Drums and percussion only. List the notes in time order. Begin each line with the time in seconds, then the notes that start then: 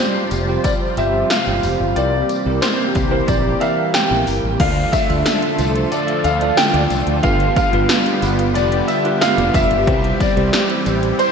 0.31 closed hi-hat, tambourine
0.64 kick, closed hi-hat, tambourine
0.97 closed hi-hat, tambourine
1.30 snare, closed hi-hat, tambourine
1.63 open hi-hat, tambourine
1.96 closed hi-hat, tambourine
2.29 closed hi-hat, tambourine
2.62 snare, closed hi-hat, tambourine
2.95 kick, closed hi-hat, tambourine
3.28 kick, closed hi-hat, tambourine
3.61 closed hi-hat, tambourine
3.94 snare, closed hi-hat, tambourine
4.27 open hi-hat, tambourine
4.60 kick, closed hi-hat, crash
4.77 closed hi-hat
4.93 kick, closed hi-hat, tambourine
5.10 closed hi-hat
5.26 snare, closed hi-hat, tambourine
5.43 closed hi-hat
5.59 closed hi-hat, tambourine
5.75 closed hi-hat
5.92 closed hi-hat, tambourine
6.08 closed hi-hat
6.24 closed hi-hat, tambourine
6.41 closed hi-hat
6.57 snare, closed hi-hat, tambourine
6.74 closed hi-hat
6.90 closed hi-hat, tambourine
7.07 closed hi-hat
7.23 kick, closed hi-hat, tambourine
7.40 closed hi-hat
7.56 kick, closed hi-hat, tambourine
7.73 closed hi-hat
7.89 snare, closed hi-hat, tambourine
8.06 closed hi-hat
8.22 closed hi-hat, tambourine
8.39 closed hi-hat
8.55 closed hi-hat, tambourine
8.72 closed hi-hat
8.88 closed hi-hat, tambourine
9.05 closed hi-hat
9.21 snare, closed hi-hat, tambourine
9.38 closed hi-hat
9.54 kick, closed hi-hat, tambourine
9.71 closed hi-hat
9.87 kick, closed hi-hat
10.04 closed hi-hat
10.20 kick, closed hi-hat, tambourine
10.37 closed hi-hat
10.53 snare, closed hi-hat, tambourine
10.70 closed hi-hat
10.86 closed hi-hat, tambourine
11.03 closed hi-hat
11.19 closed hi-hat, tambourine